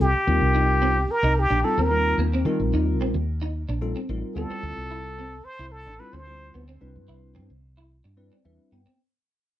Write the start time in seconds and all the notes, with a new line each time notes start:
0.00 C2 G4
0.15 muted fretless electric bass stroke
0.27 D#2 G3 C4 D#4 F4 A#4
0.41 C2
0.55 D#4
0.82 C4
1.09 A#4, muted fretless electric bass stroke
1.23 C2 D#4
1.40 G4
1.50 A#1 D4
1.64 G3 C4 D#4 F4 A4, muted fretless electric bass stroke
1.78 D#2 C4 A#4
1.91 G3 C4 D#4 F4 A#4
2.18 D#2 A#3
2.34 C4
2.45 D#3 G3 C4 D#4 F4 A#4
2.60 A#1
2.73 D#2 D#4
3.01 A#1 C4
3.14 D#2
3.42 D#4
3.69 A#1 D4
3.81 G3 C4 D#4 F4 A4
3.96 C4
4.09 A1 G3 C4 D#4 F4 A#4
4.35 D2 G3 B3 C4 E4 F4 A4
4.50 C4, muted fretless electric bass stroke
4.63 D2
4.77 C2
4.91 E4
5.19 C4
5.45 C5
5.59 C2 E4
5.72 A4
5.86 A1 D4
5.99 G3 C4 E4 F4 A4 B4
6.13 D2 C4 C5
6.27 G3 C4 E4 F4 C5
6.54 D2 B3
6.68 C4
6.81 C2 G3 C4 D4 E4 B4
6.96 G2
7.08 C2 E4
7.35 G2 C4
7.50 C2
7.77 E4
8.04 G2 D4
8.17 G3 C4 D4 E4 B4 D5
8.32 C4
8.45 E2 G3 C4 D4 E4 B4 E5
8.72 G2 B3 G5
8.86 C4